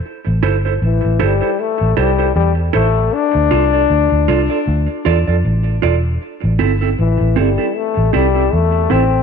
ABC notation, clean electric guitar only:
X:1
M:4/4
L:1/16
Q:"Swing 16ths" 1/4=78
K:Am
V:1 name="Clean electric guitar"
z2 [EAc] [EAc] z2 [EAc] [EAc] z2 [EAc] [EAc] z2 [EAc] z | z2 [FAd] [FAd] z2 [FAd] [FAd] z2 [FAd] [FAd] z2 [FAd] z | z2 [CEA] [CEA] z2 [CEA] [CEA] z2 [CEA] [CEA] z2 [CEA] z |]